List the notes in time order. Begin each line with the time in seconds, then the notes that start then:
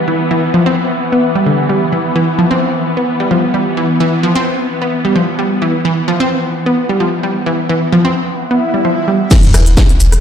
Already playing: E3 B3
0.08 E3
0.31 E3
0.54 F3
0.66 C4
1.12 B3
1.35 G3
1.46 D3
1.69 G3
1.92 E3
2.16 E3
2.39 F3
2.51 C4
2.97 B3
3.20 G3
3.31 F3
3.54 G3
3.77 E3
4.00 E3
4.23 F3
4.36 C4
4.82 B3
5.05 G3
5.16 F3
5.39 G3
5.62 E3
5.85 E3
6.08 F3
6.20 C4
6.66 B3
6.89 G3
7.00 F3
7.23 G3
7.46 E3
7.69 E3
7.92 F3
8.05 C4
8.39 swell
8.51 B3
8.74 G3
8.85 F3
9.08 G3
9.31 E3 B3, kick, snare, closed hi-hat, crash, sub drop, shaker
9.43 snare, closed hi-hat
9.54 E1 E3, cross-stick, open hi-hat, shaker
9.66 E1, closed hi-hat
9.77 E3, kick, snare, closed hi-hat, shaker
9.89 snare, closed hi-hat
10.00 E1, open hi-hat, shaker
10.12 E1, cross-stick, closed hi-hat